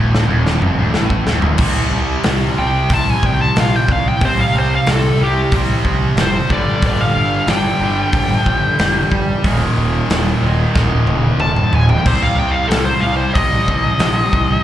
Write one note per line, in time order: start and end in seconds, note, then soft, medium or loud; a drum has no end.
0.00 0.26 D1 loud
0.00 0.26 D2 loud
0.15 snare medium
0.27 0.59 D#1 medium
0.27 0.60 D#2 loud
0.47 snare medium
0.60 0.76 F1 loud
0.60 0.77 F2 loud
0.60 mid tom medium
0.77 0.93 D1 medium
0.77 0.94 D2 loud
0.94 1.25 A1 loud
0.94 1.26 A2 loud
0.94 snare medium
1.10 kick medium
1.26 1.57 D1 medium
1.26 1.58 D2 medium
1.26 snare medium
1.42 floor tom loud
1.58 1.82 C2 loud
1.58 2.60 C3 medium
1.58 2.58 G3 medium
1.58 kick loud
1.58 crash loud
1.62 2.57 C4 loud
1.92 2.15 C2 loud
2.24 2.48 C2 loud
2.24 snare loud
2.24 open hi-hat medium
2.57 2.81 C2 loud
2.57 4.20 C3 medium
2.57 4.23 G3 medium
2.57 4.19 C4 loud
2.57 2.90 G5 loud
2.89 3.13 C2 medium
2.89 4.20 C3 medium
2.89 4.23 G3 medium
2.89 4.21 C4 medium
2.89 kick loud
2.89 open hi-hat medium
2.94 3.10 A5 medium
3.10 3.26 G#5 medium
3.23 3.46 C2 loud
3.23 3.41 G5 loud
3.23 kick medium
3.42 3.57 A5 loud
3.56 3.79 A#1 medium
3.56 3.76 F5 medium
3.56 snare loud
3.56 open hi-hat medium
3.76 3.90 G5 medium
3.88 4.11 C2 loud
3.88 kick medium
3.92 4.07 F5 medium
4.09 4.23 G5 medium
4.20 4.44 C2 medium
4.20 5.18 C3 loud
4.20 5.20 G3 medium
4.20 kick loud
4.20 open hi-hat medium
4.25 5.18 C4 loud
4.25 4.39 C5 loud
4.40 4.55 F5 medium
4.54 4.77 C2 medium
4.59 4.73 C5 medium
4.75 4.89 F5 medium
4.87 5.10 C2 loud
4.87 snare loud
4.87 open hi-hat medium
4.92 5.22 A4 loud
5.19 5.43 C2 medium
5.19 6.48 C3 medium
5.19 6.50 G3 medium
5.19 6.48 C4 medium
5.23 5.53 G4 loud
5.52 5.75 C2 medium
5.52 6.49 C3 medium
5.52 6.53 G3 medium
5.52 kick loud
5.52 open hi-hat medium
5.57 6.51 C4 medium
5.84 6.07 C2 loud
5.84 kick medium
6.16 6.39 F1 loud
6.16 snare loud
6.16 open hi-hat medium
6.21 6.52 C5 loud
6.49 6.73 G1 medium
6.49 7.46 G2 medium
6.49 7.47 D3 loud
6.49 7.51 G3 loud
6.49 6.83 D5 loud
6.49 kick medium
6.82 7.05 G1 loud
6.82 kick loud
6.82 open hi-hat medium
6.87 7.01 D5 loud
7.01 7.48 F5 medium
7.15 7.38 G1 loud
7.47 7.70 G1 loud
7.47 9.09 G2 medium
7.47 9.10 D3 medium
7.47 9.42 G5 loud
7.47 snare loud
7.47 open hi-hat medium
7.51 9.47 G3 medium
7.80 8.03 G1 loud
7.80 9.11 G2 medium
7.80 9.11 D3 medium
7.80 9.47 G3 loud
8.13 8.36 G1 medium
8.13 kick loud
8.13 open hi-hat medium
8.46 8.69 G1 loud
8.46 kick medium
8.79 9.02 F1 loud
8.79 snare loud
8.79 open hi-hat medium
9.12 9.34 G1 loud
9.12 kick medium
9.43 9.67 D#1 loud
9.43 10.40 D#2 medium
9.43 10.41 A#2 medium
9.43 kick loud
9.43 open hi-hat medium
9.47 10.41 D#3 loud
9.77 9.99 D#1 loud
10.09 10.32 D#1 medium
10.09 snare loud
10.09 open hi-hat medium
10.42 10.65 D#1 loud
10.42 12.04 D#2 medium
10.42 12.05 A#2 medium
10.42 12.04 D#3 medium
10.75 10.98 D#1 medium
10.75 12.04 D#2 medium
10.75 12.04 A#2 medium
10.75 12.05 D#3 medium
10.75 kick loud
10.75 snare medium
11.07 11.30 D#1 medium
11.07 high tom medium
11.38 11.61 D#1 medium
11.38 11.72 A5 loud
11.38 mid tom medium
11.56 mid tom medium
11.72 11.95 D#1 medium
11.72 11.90 G#5 medium
11.72 floor tom loud
11.89 12.06 G5 medium
11.89 floor tom loud
12.05 12.28 C2 medium
12.05 13.05 C3 loud
12.05 13.03 G3 medium
12.05 13.01 C4 loud
12.05 12.22 C5 loud
12.05 kick loud
12.05 crash loud
12.23 12.38 F5 medium
12.35 12.59 C2 loud
12.35 12.54 G5 loud
12.52 12.69 F5 loud
12.68 12.92 C2 loud
12.68 12.85 A4 loud
12.68 snare loud
12.68 open hi-hat medium
12.85 13.02 C5 loud
13.00 13.25 C2 loud
13.00 14.64 G3 medium
13.00 14.63 C4 medium
13.00 13.16 F5 loud
13.05 14.62 C3 medium
13.17 13.34 C5 medium
13.34 13.58 C2 medium
13.34 14.64 C3 medium
13.34 14.61 D#5 loud
13.34 kick loud
13.34 open hi-hat medium
13.38 14.64 G3 medium
13.38 14.64 C4 medium
13.67 13.90 C2 loud
13.67 kick medium
13.99 14.22 A#1 medium
13.99 snare loud
13.99 open hi-hat medium
14.33 14.56 C2 medium
14.33 kick medium